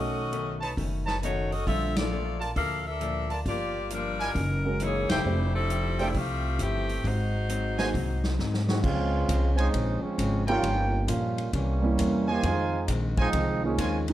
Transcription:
Already playing: B1 B2 D#3 A3 C#4 F#4 A4 D#5
0.32 B2 D#3 A3 C#4, closed hi-hat
0.61 D#4 B4 C#5 A5, open hi-hat
0.77 F#1 B2 D#3 A3 C#4, kick, open hi-hat
1.06 D#4 B4 C#5 A5, snare
1.22 B2 D#3 A3 C#4 D#4 F#4 C#5, closed hi-hat
1.52 C#4 F#4 A4 D#5, open hi-hat
1.67 A#1 A#2 D3 F3 G3 A3 C4 D4 F4 A4 E5, kick, open hi-hat
1.96 A#3 F4 A4 D5, snare, ride
2.12 A#2 F3 A3 D4
2.40 F4 A#4 D5 A5, open hi-hat
2.56 D2 A#2 F3 A3 D4 A4 A#4 F5, kick, open hi-hat
2.87 D4 A4 A#4 E5
3.01 A#2 F3 A3 D4, closed hi-hat
3.29 F4 A#4 D5 A5, open hi-hat
3.46 G1 G2 F3 A#3 D4 F4 G4 D5, kick, open hi-hat
3.90 G2 F3 G3 A#3 D4 F4 A#4, closed hi-hat
4.20 E4 A#4 D#5 G#5, open hi-hat
4.35 F#1 F#2 E3 A#3 D#4, kick, open hi-hat
4.65 G#3 C#4 F#4 A#4
4.80 F#2 E3 A#3 D#4 E4 G#4 C#5, closed hi-hat
5.09 F#1 A3 E4 F4 G4 A4 C5 E5 G5, snare, ride
5.25 F1 F3 A3 D4 E4 G4 C5
5.56 G3 C4 E4 A4
5.70 F3 A3 E4 G4, closed hi-hat
5.99 A3 D4 F4 G4 A4 C5 E5 G5, open hi-hat
6.09 E4
6.14 C2 F3 G3 A3 C4 E4 F4 G4, kick, open hi-hat
6.59 G1 E3 F3 A3 C4 E4 G4, closed hi-hat
6.89 open hi-hat
7.03 G#1 G#2 F#3 C4 D#4 C5, kick, open hi-hat
7.07 G#3 D#4 F#4
7.49 G#2 F#3 C4 D#4, closed hi-hat
7.78 A#3 D#4 F#4 G#4 C5 D#5 G#5, snare, open hi-hat
7.94 C2 G#2 F#3 C4 D#4, kick, open hi-hat
8.24 snare
8.39 G#2 F#3 C4 D#4, snare
8.54 snare
8.68 D#3 G#3 C4 F#4, snare
8.82 C#2 C#3 F3 G#3 C4 C#4 F4, kick, crash
8.86 G#3 C4
9.28 C2 C#3 F3 G#3 C4, kick, hi-hat pedal, ride
9.56 G#3 C4 C#4 D#4 F4 C5 C#5 G#5, ride
9.74 A#1 C#3 F3 G#3 C4, kick, ride
10.01 F3 G#3 C4 C#4, muted upright bass stroke
10.18 G#1 C#3 F3 G#3 C4, kick, hi-hat pedal, ride
10.46 F3 G3 A#3 C#4 D#4 F4 G4 A#4 C#5 G5, ride
10.63 G1 G2 F3 A#3 C#4, kick, ride
11.07 A#1 G2 F3 G3 A#3 C#4 F4, kick, hi-hat pedal, ride
11.38 ride
11.53 C2 C3 E3 G3 A#3 C#4, kick, ride
11.82 G3 A#3 C#4 E4
11.98 E2 C3 E3 A#3 C#4, kick, hi-hat pedal, ride
12.27 E3 A#3 C#4 F4 G4 C5 D#5 G#5
12.43 F2 D#3 G#3 C4 D#4 F4, kick, ride
12.88 A#1 F2 D#3 G#3 C4, kick, hi-hat pedal, ride
13.17 F3 G#3 C4 D#4 F4 C5 D#5 G#5, kick, ride
13.32 C2 F2 D#3 G#3 C4, kick, ride
13.63 D#3 F3 G#3 A#3 C#4 D#4 G#4
13.78 D#2 F2 D#3 G#3 C4 F4 C5 D#5 G#5, kick, hi-hat pedal, ride
14.08 D#3 F3 G#3 C4 C#4 D#4, ride

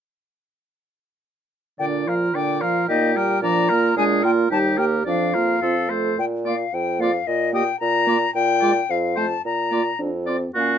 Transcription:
1.79 A#2 D3 D4 D5 G5
2.07 F3 F4 A#4 F5
2.35 A#2 D3 D4 D5 G5
2.61 F3 F4 A#4 F5
2.88 A#2 A#3 D#4 G4 D#5
3.15 G3 G4 A#4 G5
3.42 A#2 F3 D4 D5 A#5
3.69 A#3 F4 A#4
3.96 A#2 G#3 D4 G#4 G#5
4.23 A#3 F4 A#4 G5
4.50 D#2 G3 D#4 G4 A5
4.77 A#3 G4 A#4 G5
5.05 F2 F3 D4 D5 F5
5.34 A#3 F4 A#4
5.61 F2 C4 F4 A4
5.89 A3 A4 C5
6.18 A#2 G5
6.45 A#3 F4 D5 F5
6.73 F2 G5
6.99 A#3 F4 D5 F5
7.27 A#2 D#5
7.53 A#3 G4 D#5 G5
7.80 A#2 A#5
8.07 A#3 F4 D5
8.35 A#2 G5
8.61 G#3 F4 D5
8.89 F2 F5
9.16 A3 F4 C5 A5
9.45 A#2 A#5
9.71 A#3 F4 D5
9.99 F2 D4
10.26 C4 F4 D5
10.55 A#2 A#3 C#4 F#4 F5

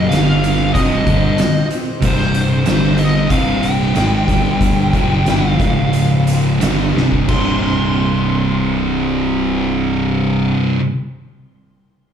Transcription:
Already playing: F#3 G5
0.09 G1 G2 D3 G3 F5, closed hi-hat
0.13 snare
0.44 closed hi-hat
0.74 C1 C2 G2 C3 C4 G4 C5 D#5, kick, closed hi-hat
1.07 G1 G2 D3 G3, kick, closed hi-hat
1.38 snare, closed hi-hat
1.70 closed hi-hat
2.02 C1 C2 G2 C3 C5, kick, closed hi-hat
2.34 closed hi-hat
2.66 G1 G2 D3 G3, snare, closed hi-hat
2.98 D#5, closed hi-hat
3.30 C1 C2 G2 C3 F5, kick, closed hi-hat
3.62 G5, closed hi-hat
3.95 G#1 G#2 D#3 G#3, snare, closed hi-hat
4.28 G1 G2 D3 G3, kick, closed hi-hat
4.61 kick, closed hi-hat
4.93 F#1 F#2 C#3 F#3, kick, closed hi-hat
5.26 G1 G2 D3 G3, snare, closed hi-hat
5.49 F5
5.59 C#1 C#2 G#2 C#3, kick, closed hi-hat
5.93 closed hi-hat
6.27 closed hi-hat
6.60 G1 G2 D3 G3, snare, closed hi-hat
6.95 C1 C2 G2 C3, snare
7.12 kick
7.27 C1 C2 G2 C6, kick, crash
7.31 C3

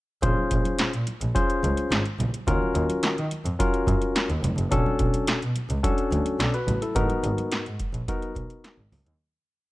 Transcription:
0.22 A#1 C#4 F4 G#4 C5, kick, closed hi-hat, muted conga, low conga
0.37 high conga
0.51 A#1, kick, closed hi-hat, muted conga
0.65 closed hi-hat, high conga
0.79 A#2, snare, clap, closed hi-hat, muted conga
0.93 A#2, closed hi-hat
1.07 closed hi-hat, muted conga
1.21 A#1, closed hi-hat
1.35 C#4 F4 G#4 C5, kick, closed hi-hat, muted conga, high conga
1.50 closed hi-hat
1.63 C#2, closed hi-hat, muted conga, high conga
1.77 closed hi-hat
1.91 G#1, snare, clap, closed hi-hat, muted conga
2.05 closed hi-hat
2.19 A#1, closed hi-hat, muted conga, high conga, low conga
2.34 closed hi-hat
2.47 D#2 C#4 F4 F#4 A#4, kick, closed hi-hat, muted conga, low conga
2.62 high conga
2.75 D#2, closed hi-hat
2.89 closed hi-hat, high conga
3.03 D#3, snare, clap, closed hi-hat, muted conga
3.17 D#3, closed hi-hat
3.31 closed hi-hat, muted conga
3.45 F2, closed hi-hat
3.59 C#4 F4 F#4 A#4, kick, closed hi-hat, muted conga, high conga
3.74 closed hi-hat
3.87 F#2, kick, closed hi-hat, muted conga, high conga
4.02 closed hi-hat
4.16 snare, clap, closed hi-hat, muted conga
4.29 D#2, closed hi-hat
4.43 F1, closed hi-hat, muted conga, high conga, low conga
4.57 F#1, closed hi-hat
4.71 B1 C#4 D4 F#4 A4, kick, closed hi-hat, low conga
4.86 high conga
4.99 B1, kick, closed hi-hat
5.13 closed hi-hat, high conga
5.27 B2, snare, clap, closed hi-hat, muted conga
5.41 B2, closed hi-hat
5.56 closed hi-hat, muted conga
5.70 C#2, closed hi-hat
5.83 C#4 D4 F#4 A4, kick, closed hi-hat, muted conga, high conga
5.98 closed hi-hat
6.11 D2, closed hi-hat, high conga
6.26 closed hi-hat
6.40 B1 A4 D5, snare, clap, closed hi-hat
6.54 F#4 B4, closed hi-hat
6.68 A1, closed hi-hat, muted conga, high conga, low conga
6.82 E4 A4, closed hi-hat
6.95 G#1 B3 D#4 F#4 A#4, kick, closed hi-hat, muted conga, low conga
7.10 closed hi-hat, high conga
7.24 G#1, closed hi-hat, muted conga
7.37 closed hi-hat, high conga
7.52 G#2, snare, clap, closed hi-hat
7.65 G#2, closed hi-hat
7.79 kick, closed hi-hat, muted conga
7.93 A#1, closed hi-hat
8.08 B3 D#4 F#4 A#4, kick, closed hi-hat, muted conga, high conga
8.22 closed hi-hat
8.36 B1, kick, closed hi-hat, muted conga, high conga
8.50 closed hi-hat
8.64 snare, clap, closed hi-hat, muted conga
8.78 G#1
8.92 C#2, open hi-hat, high conga, low conga
9.06 D#2, closed hi-hat

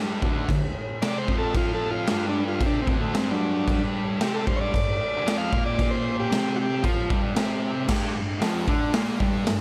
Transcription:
Already playing: G2 G3
0.22 D2 D3, kick
0.49 D2, kick, crash
1.02 C3 C4 D5, snare, crash
1.18 C5
1.28 F2 F3, kick
1.38 A4
1.54 F2 F3 F4, kick, crash
1.74 A4
1.91 F4
2.07 G2 G3 F4, snare, crash
2.29 D4
2.48 F4
2.60 C3 C4, kick, crash
2.66 D4
2.82 C4
2.87 D2 D3, kick
3.01 A3
3.14 G2 G3 C4, snare, crash
3.31 F#3 D4
3.68 G2 G3, kick, crash
4.21 C3 C4 G4, snare, crash
4.34 A4
4.46 G2 G3 C5, kick
4.56 C#5
4.61 D5
4.74 G2, kick, crash
5.26 F2 F3, snare, crash
5.38 F5
5.52 A#2 A#3, kick
5.66 D5
5.76 A#2 A#3, kick, crash
5.91 C5
6.20 G4
6.31 C3 C4, snare, crash
6.56 F#4
6.61 G4
6.82 F3 F4, kick, crash
7.09 G2 G3, kick
7.35 C3 C4, snare, crash
7.88 G2 G3, kick, snare, crash
8.15 G2
8.41 F2 F3, snare, open hi-hat
8.67 D3 D4, kick
8.93 A#2 A#3, snare, open hi-hat
9.19 G2 G3, kick
9.46 G2, snare, open hi-hat

